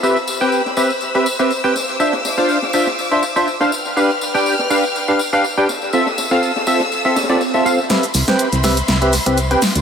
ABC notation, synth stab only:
X:1
M:4/4
L:1/16
Q:"Swing 16ths" 1/4=122
K:C
V:1 name="Synth stab"
[CGBe] z2 [CGBg]2 z [CGBe] z2 [CGBe] z [CGBe] z [CGBg] z2 | [DFce] z2 [DFcf]2 z [DFce] z2 [DFce] z [DFce] z [DFcf] z2 | [DGBf] z2 [DGBg]2 z [DGBf] z2 [DGBf] z [DGBf] z [DGBg] z2 | [CFAe] z2 [CFAf]2 z [CFAe] z2 [CFAe] z [CFAd] z [CFAe] [CFAf] z |
[CGBe] z2 [CGBg]2 z [CGBe] z2 [CGBe] z [CGBe] z [CGBg] z2 |]